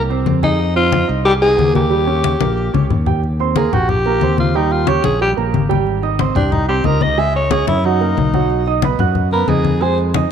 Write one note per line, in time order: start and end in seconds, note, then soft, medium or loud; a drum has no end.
0.00 0.23 C2 medium
0.10 0.37 C4 medium
0.10 0.37 C5 medium
0.10 high conga soft
0.26 1.03 F2 medium
0.26 high conga medium
0.43 0.74 D#4 medium
0.43 0.56 G#4 medium
0.43 0.57 G#5 medium
0.43 high conga medium
0.59 0.73 D#4 medium
0.59 0.73 D#5 medium
0.59 high conga soft
0.75 1.03 C4 medium
0.75 1.07 F4 loud
0.75 1.03 C5 medium
0.75 high conga soft
0.92 high conga medium
1.07 1.55 C2 medium
1.07 1.22 D#4 medium
1.07 1.22 D#5 medium
1.07 high conga soft
1.25 1.33 G4 loud
1.25 1.39 G#4 medium
1.25 1.39 G#5 medium
1.25 high conga soft
1.41 1.69 D#4 medium
1.41 1.72 G#4 loud
1.41 1.69 D#5 medium
1.41 high conga soft
1.58 2.35 D#2 medium
1.58 high conga medium
1.74 1.88 A#3 medium
1.74 3.03 G4 medium
1.74 1.88 A#4 medium
1.74 high conga medium
1.90 2.04 G3 medium
1.90 2.05 G4 medium
1.90 high conga soft
2.07 2.34 C#4 medium
2.07 2.34 C#5 medium
2.07 high conga soft
2.24 high conga loud
2.40 2.72 A#1 medium
2.40 2.68 A#3 medium
2.40 2.68 A#4 medium
2.40 high conga medium
2.58 high conga soft
2.74 2.89 C#2 medium
2.74 3.01 C#4 medium
2.74 3.01 C#5 medium
2.74 high conga medium
2.90 3.67 D#2 medium
2.90 low conga medium
3.06 3.20 G4 medium
3.06 3.20 G5 medium
3.06 low conga medium
3.23 high conga soft
3.40 3.53 C4 medium
3.40 3.53 C5 medium
3.40 3.53 C6 medium
3.40 high conga soft
3.56 3.70 A#3 medium
3.56 3.75 G#4 medium
3.56 3.70 A#4 medium
3.56 3.70 A#5 medium
3.56 high conga medium
3.73 4.19 A#1 medium
3.73 3.91 F#4 medium
3.73 4.00 G4 medium
3.73 4.00 G5 medium
3.73 4.00 G6 medium
3.73 high conga soft
3.73 low conga medium
3.89 4.39 G4 medium
3.89 high conga soft
3.89 low conga medium
4.06 4.19 A#3 medium
4.06 4.19 A#4 medium
4.06 4.20 A#5 medium
4.06 high conga soft
4.21 4.99 D#2 medium
4.21 4.49 C4 medium
4.21 4.49 C5 medium
4.21 4.50 C6 medium
4.21 high conga medium
4.38 4.57 F4 medium
4.38 high conga medium
4.54 4.82 G3 medium
4.54 4.73 D#4 medium
4.54 4.82 G4 medium
4.54 4.82 G5 medium
4.54 high conga soft
4.71 4.91 F4 medium
4.71 high conga soft
4.87 5.15 C#4 medium
4.87 5.04 G4 medium
4.87 5.15 C#5 medium
4.87 5.15 C#6 medium
4.87 high conga medium
5.04 5.35 A#1 medium
5.04 5.20 G#4 medium
5.04 high conga medium
5.21 5.34 G3 medium
5.21 5.35 G4 medium
5.21 5.31 G4 medium
5.21 5.35 G5 medium
5.21 high conga soft
5.37 5.53 A#1 medium
5.37 5.64 A#3 medium
5.37 5.64 A#4 medium
5.37 5.64 A#5 medium
5.37 high conga soft
5.54 6.30 G#1 medium
5.54 high conga medium
5.69 5.97 G3 medium
5.69 5.97 G4 medium
5.69 5.97 G5 medium
5.69 high conga medium
5.87 high conga soft
6.02 6.16 D#4 medium
6.02 6.17 D#5 medium
6.02 6.17 D#6 medium
6.02 high conga soft
6.19 6.33 C4 medium
6.19 6.33 C5 medium
6.19 6.33 C6 medium
6.19 high conga medium
6.35 6.81 C2 loud
6.35 6.54 D4 medium
6.35 6.63 G4 medium
6.35 6.63 G5 medium
6.35 6.63 G6 medium
6.35 high conga soft
6.35 low conga medium
6.52 6.68 D#4 medium
6.52 high conga soft
6.52 low conga medium
6.68 6.82 C4 medium
6.68 6.87 G4 medium
6.68 6.82 C5 medium
6.68 6.83 C6 medium
6.68 high conga soft
6.84 7.62 C#2 medium
6.84 7.12 D#4 medium
6.84 7.04 A#4 medium
6.84 7.12 D#5 medium
6.84 7.12 D#6 medium
6.84 high conga medium
7.01 7.20 D#5 medium
7.01 high conga medium
7.18 7.45 G#3 medium
7.18 7.45 G#4 medium
7.18 7.35 E5 medium
7.18 7.45 G#5 medium
7.18 high conga soft
7.35 7.53 C#5 medium
7.35 high conga soft
7.51 7.78 C#4 medium
7.51 7.67 G#4 medium
7.51 7.79 C#5 medium
7.51 7.79 C#6 medium
7.51 high conga medium
7.67 8.14 F#2 medium
7.67 7.87 E4 medium
7.67 high conga medium
7.84 7.98 F#3 medium
7.84 8.83 D#4 medium
7.84 7.98 F#4 medium
7.84 7.98 F#5 medium
7.84 high conga soft
8.01 8.28 A#3 medium
8.01 8.28 A#4 medium
8.01 8.28 A#5 medium
8.01 high conga soft
8.17 8.94 B1 medium
8.17 high conga medium
8.34 8.61 F#3 medium
8.34 8.61 F#4 medium
8.34 8.61 F#5 medium
8.34 high conga medium
8.50 high conga soft
8.66 8.80 D#4 medium
8.66 8.80 D#5 medium
8.66 8.81 D#6 medium
8.66 high conga soft
8.82 8.97 B3 medium
8.82 8.97 B4 medium
8.82 8.97 B5 medium
8.82 high conga medium
8.99 9.45 F#2 medium
8.99 9.26 F#4 medium
8.99 9.26 F#5 medium
8.99 9.27 F#6 medium
8.99 high conga soft
8.99 low conga medium
9.15 high conga soft
9.15 low conga medium
9.31 9.46 B3 medium
9.31 9.50 A#4 medium
9.31 9.46 B4 medium
9.31 9.46 B5 medium
9.31 high conga soft
9.48 10.25 F2 medium
9.48 9.76 D#4 medium
9.48 9.83 G#4 medium
9.48 9.76 D#5 medium
9.48 9.76 D#6 medium
9.48 high conga medium
9.65 high conga medium
9.81 10.08 G#3 medium
9.81 10.09 G#4 medium
9.81 9.98 C5 medium
9.81 10.09 G#5 medium
9.81 high conga soft
9.98 high conga soft
10.14 10.32 D#4 medium
10.14 10.32 D#5 medium
10.14 10.32 D#6 medium
10.14 high conga medium